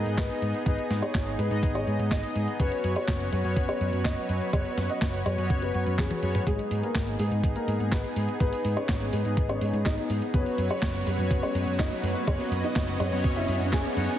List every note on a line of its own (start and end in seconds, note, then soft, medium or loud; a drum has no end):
0.00 0.63 B3 medium
0.00 2.56 B3 medium
0.00 0.63 D#4 medium
0.00 2.56 D#4 medium
0.00 0.63 G#4 medium
0.00 2.56 G#4 medium
0.00 0.11 A#4 medium
0.00 0.63 D#5 loud
0.06 0.15 G#2 medium
0.06 closed hi-hat soft
0.18 0.27 G#1 medium
0.18 0.58 B4 medium
0.18 kick loud
0.18 snare loud
0.18 clap medium
0.18 closed hi-hat medium
0.30 closed hi-hat soft
0.42 0.52 G#2 medium
0.42 closed hi-hat medium
0.54 closed hi-hat soft
0.66 0.76 G#1 loud
0.66 1.48 B3 medium
0.66 1.48 D#4 medium
0.66 1.48 G#4 medium
0.66 0.96 B4 loud
0.66 1.48 D#5 medium
0.66 kick loud
0.66 closed hi-hat medium
0.78 closed hi-hat soft
0.90 1.00 G#2 medium
0.90 snare medium
0.90 closed hi-hat medium
1.02 1.32 C#5 medium
1.02 closed hi-hat soft
1.15 1.34 G#1 medium
1.15 kick loud
1.15 snare loud
1.15 clap loud
1.15 closed hi-hat medium
1.27 closed hi-hat soft
1.39 1.48 G#2 loud
1.39 1.69 B4 medium
1.39 closed hi-hat medium
1.51 1.61 G#2 loud
1.51 2.57 B3 medium
1.51 2.57 D#4 medium
1.51 2.57 G#4 medium
1.51 2.57 D#5 loud
1.51 closed hi-hat soft
1.63 1.82 G#1 medium
1.63 kick loud
1.63 closed hi-hat medium
1.75 2.05 C#5 medium
1.75 closed hi-hat soft
1.87 1.97 G#2 medium
1.87 closed hi-hat soft
1.99 2.09 G#2 medium
1.99 closed hi-hat soft
2.11 2.21 G#1 medium
2.11 2.51 D#5 medium
2.11 kick loud
2.11 snare loud
2.11 clap medium
2.11 closed hi-hat medium
2.23 closed hi-hat soft
2.35 2.45 G#2 medium
2.35 closed hi-hat medium
2.48 closed hi-hat soft
2.60 2.69 F#1 medium
2.60 6.43 F#3 medium
2.60 3.42 B3 medium
2.60 3.41 C#4 medium
2.60 3.41 F#4 medium
2.60 6.43 F#4 medium
2.60 6.43 B4 medium
2.60 2.90 B4 loud
2.60 3.41 C#5 medium
2.60 6.43 C#5 medium
2.60 kick loud
2.60 closed hi-hat medium
2.72 closed hi-hat soft
2.84 2.94 F#2 medium
2.84 closed hi-hat medium
2.96 3.26 C#5 medium
2.96 closed hi-hat soft
3.08 3.28 F#1 medium
3.08 kick loud
3.08 snare loud
3.08 clap loud
3.08 closed hi-hat medium
3.20 closed hi-hat soft
3.32 3.42 F#2 medium
3.32 3.62 B4 medium
3.32 closed hi-hat medium
3.44 3.54 F#2 loud
3.44 4.50 B3 medium
3.44 4.50 C#4 medium
3.44 4.50 F#4 medium
3.44 4.50 C#5 loud
3.44 closed hi-hat soft
3.56 3.66 F#1 loud
3.56 kick loud
3.56 closed hi-hat medium
3.69 3.99 C#5 medium
3.69 closed hi-hat soft
3.81 3.90 F#2 loud
3.81 closed hi-hat soft
3.93 4.03 F#2 medium
3.93 closed hi-hat soft
4.05 4.15 F#1 medium
4.05 4.45 D#5 medium
4.05 kick loud
4.05 snare loud
4.05 clap medium
4.05 closed hi-hat medium
4.17 closed hi-hat soft
4.29 4.39 F#2 medium
4.29 closed hi-hat medium
4.41 closed hi-hat soft
4.53 4.63 F#1 medium
4.53 5.35 B3 medium
4.53 5.35 C#4 medium
4.53 5.35 F#4 medium
4.53 4.83 C#5 loud
4.53 5.35 C#5 medium
4.53 kick loud
4.53 closed hi-hat medium
4.66 closed hi-hat soft
4.77 4.87 F#2 medium
4.77 snare medium
4.77 closed hi-hat medium
4.90 5.19 D#5 medium
4.90 closed hi-hat soft
5.02 5.21 F#1 medium
5.02 kick loud
5.02 snare loud
5.02 clap loud
5.02 closed hi-hat medium
5.14 closed hi-hat soft
5.26 5.36 F#2 loud
5.26 5.56 C#5 medium
5.26 closed hi-hat medium
5.38 5.48 F#2 loud
5.38 5.72 B3 medium
5.38 5.72 C#4 medium
5.38 5.72 F#4 medium
5.38 5.72 C#5 loud
5.38 closed hi-hat soft
5.50 5.70 F#1 medium
5.50 kick loud
5.50 closed hi-hat medium
5.62 5.92 B4 medium
5.62 closed hi-hat soft
5.74 5.84 F#2 medium
5.74 6.20 B3 medium
5.74 6.20 C#4 medium
5.74 6.20 F#4 medium
5.74 6.20 C#5 medium
5.74 closed hi-hat soft
5.86 5.96 F#2 medium
5.86 closed hi-hat soft
5.98 6.08 F#1 loud
5.98 6.38 G#4 medium
5.98 kick loud
5.98 snare loud
5.98 clap loud
5.98 closed hi-hat medium
5.98 high tom medium
6.11 closed hi-hat soft
6.11 high tom medium
6.23 6.42 F#2 loud
6.23 6.44 B3 loud
6.23 6.44 C#4 medium
6.23 6.44 F#4 medium
6.23 6.44 C#5 loud
6.23 closed hi-hat medium
6.35 closed hi-hat soft
6.35 mid tom medium
6.47 6.57 G#1 medium
6.47 6.77 G#3 medium
6.47 7.29 B3 medium
6.47 10.30 B3 medium
6.47 7.29 D#4 medium
6.47 10.30 D#4 medium
6.47 6.77 G#4 medium
6.47 7.29 G#4 medium
6.47 10.30 G#4 medium
6.47 7.29 D#5 medium
6.47 kick loud
6.47 closed hi-hat medium
6.47 riser medium
6.59 closed hi-hat soft
6.71 6.81 G#2 medium
6.71 open hi-hat loud
6.83 7.13 A#3 medium
6.83 7.13 A#4 medium
6.83 closed hi-hat soft
6.95 7.15 G#1 medium
6.95 kick loud
6.95 snare loud
6.95 clap medium
6.95 closed hi-hat medium
7.07 closed hi-hat soft
7.19 7.29 G#2 medium
7.19 7.49 G#3 medium
7.19 7.49 G#4 medium
7.19 open hi-hat loud
7.31 7.41 G#2 loud
7.31 8.38 B3 medium
7.31 8.38 D#4 medium
7.31 8.38 G#4 medium
7.31 8.38 D#5 loud
7.31 closed hi-hat soft
7.44 7.53 G#1 medium
7.44 kick loud
7.44 closed hi-hat medium
7.56 7.86 A#3 medium
7.56 7.86 A#4 medium
7.56 closed hi-hat soft
7.68 7.77 G#2 loud
7.68 open hi-hat loud
7.80 7.90 G#2 medium
7.80 closed hi-hat soft
7.92 8.02 G#1 medium
7.92 8.32 B3 medium
7.92 8.32 B4 medium
7.92 kick loud
7.92 snare loud
7.92 clap medium
7.92 closed hi-hat medium
8.04 closed hi-hat soft
8.16 8.26 G#2 medium
8.16 open hi-hat loud
8.29 closed hi-hat soft
8.40 8.50 G#1 medium
8.40 8.70 B3 medium
8.40 9.22 B3 medium
8.40 9.22 D#4 medium
8.40 9.22 G#4 medium
8.40 8.70 B4 loud
8.40 9.22 D#5 medium
8.40 kick loud
8.40 closed hi-hat medium
8.53 open hi-hat medium
8.65 8.74 G#2 medium
8.65 open hi-hat loud
8.77 9.07 C#4 medium
8.77 9.07 C#5 medium
8.77 closed hi-hat soft
8.89 9.08 G#1 medium
8.89 kick loud
8.89 snare loud
8.89 clap medium
8.89 closed hi-hat medium
9.01 closed hi-hat soft
9.13 9.23 G#2 loud
9.13 9.43 B3 medium
9.13 9.43 B4 medium
9.13 open hi-hat loud
9.25 9.35 G#2 loud
9.25 10.31 B3 medium
9.25 10.31 D#4 medium
9.25 10.31 G#4 medium
9.25 10.31 D#5 loud
9.25 closed hi-hat soft
9.37 9.57 G#1 medium
9.37 kick loud
9.37 closed hi-hat medium
9.49 9.79 C#4 medium
9.49 9.79 C#5 medium
9.49 closed hi-hat soft
9.61 9.71 G#2 medium
9.61 open hi-hat loud
9.73 9.83 G#2 loud
9.73 closed hi-hat soft
9.86 9.95 G#1 medium
9.86 10.25 D#4 medium
9.86 10.25 D#5 medium
9.86 kick loud
9.86 snare loud
9.86 clap medium
9.86 closed hi-hat medium
9.98 closed hi-hat soft
10.10 10.19 G#2 medium
10.10 open hi-hat medium
10.22 closed hi-hat soft
10.34 10.44 F#1 loud
10.34 14.17 F#3 medium
10.34 10.64 B3 medium
10.34 11.16 B3 medium
10.34 11.16 C#4 medium
10.34 11.16 F#4 medium
10.34 14.17 F#4 medium
10.34 10.64 B4 loud
10.34 14.17 B4 medium
10.34 11.16 C#5 medium
10.34 12.26 C#5 medium
10.34 kick loud
10.34 closed hi-hat medium
10.46 closed hi-hat soft
10.58 10.68 F#2 medium
10.58 open hi-hat loud
10.70 11.00 C#4 medium
10.70 11.00 C#5 loud
10.70 closed hi-hat soft
10.82 11.02 F#1 medium
10.82 kick loud
10.82 snare loud
10.82 clap medium
10.82 closed hi-hat medium
10.95 closed hi-hat soft
11.06 11.16 F#2 loud
11.06 11.37 B3 medium
11.06 11.37 B4 medium
11.06 open hi-hat loud
11.19 11.28 F#2 loud
11.19 12.25 B3 medium
11.19 12.25 C#4 medium
11.19 12.25 F#4 medium
11.19 12.25 C#5 loud
11.19 closed hi-hat soft
11.31 11.40 F#1 loud
11.31 kick loud
11.31 closed hi-hat medium
11.43 11.73 C#4 medium
11.43 11.73 C#5 medium
11.43 closed hi-hat soft
11.55 11.65 F#2 loud
11.55 open hi-hat loud
11.67 11.77 F#2 medium
11.67 closed hi-hat soft
11.79 11.89 F#1 medium
11.79 12.19 D#4 medium
11.79 12.19 D#5 medium
11.79 kick loud
11.79 snare loud
11.79 clap medium
11.79 closed hi-hat medium
11.91 closed hi-hat soft
12.03 12.13 F#2 medium
12.03 open hi-hat medium
12.15 closed hi-hat soft
12.27 12.37 F#1 loud
12.27 13.09 B3 medium
12.27 12.57 C#4 medium
12.27 13.09 C#4 medium
12.27 13.09 F#4 medium
12.27 13.09 C#5 medium
12.27 12.57 C#5 loud
12.27 14.19 D#5 loud
12.27 kick loud
12.27 closed hi-hat medium
12.40 open hi-hat medium
12.51 12.61 F#2 loud
12.51 open hi-hat loud
12.64 12.94 D#4 medium
12.64 12.94 D#5 medium
12.64 closed hi-hat soft
12.76 12.95 F#1 medium
12.76 kick loud
12.76 snare loud
12.76 clap medium
12.76 closed hi-hat medium
12.88 closed hi-hat soft
13.00 13.10 F#2 loud
13.00 13.30 C#4 medium
13.00 13.30 C#5 medium
13.00 open hi-hat loud
13.12 13.22 F#2 loud
13.12 13.46 B3 medium
13.12 13.46 C#4 medium
13.12 13.46 F#4 medium
13.12 13.46 C#5 loud
13.12 closed hi-hat soft
13.24 13.44 F#1 medium
13.24 kick loud
13.24 closed hi-hat medium
13.36 13.66 E4 medium
13.36 13.66 E5 medium
13.36 closed hi-hat soft
13.48 13.58 F#2 medium
13.48 13.94 B3 medium
13.48 13.94 C#4 medium
13.48 13.94 F#4 medium
13.48 13.94 C#5 medium
13.48 open hi-hat loud
13.60 13.70 F#2 loud
13.60 closed hi-hat soft
13.73 13.82 F#1 loud
13.73 14.12 G#4 medium
13.73 14.12 G#5 medium
13.73 kick loud
13.73 snare loud
13.73 clap medium
13.73 closed hi-hat medium
13.85 closed hi-hat soft
13.97 14.06 F#2 medium
13.97 14.18 B3 loud
13.97 14.18 C#4 medium
13.97 14.18 F#4 medium
13.97 14.18 C#5 loud
13.97 open hi-hat loud
14.09 closed hi-hat soft